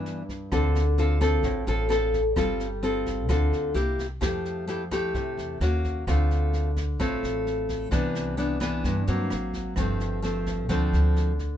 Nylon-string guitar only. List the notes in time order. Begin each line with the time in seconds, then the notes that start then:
Already playing: G2 E3 B3 D4
0.52 D3 C4 F4 A4
0.98 C4 F4 A4
1.21 C4 F4 A4
1.44 A2
1.67 C4 F4 A4
1.89 C4 F4 A4
2.36 G3 C4 F4 A4
2.83 C4 F4 A4
3.28 D3 C4 F4 A4
3.74 A#3 E4 G4
4.21 F3 A3 E4 G4
4.67 A3 E4 G4
4.91 A3 E4 G4
5.15 C3
5.61 A#3 C#4 F#4
6.07 D3 A3 C4 F4
6.99 A2 A3 C4 F4
7.91 C3 E3 B3 D4
8.37 E3 B3 D4
8.60 E3 B3 D4
8.85 G2
9.08 F#3 A#3 C4
9.77 G2 F3 A3 C4
10.22 F3 A3 C4
10.69 D3 F3 A3 C4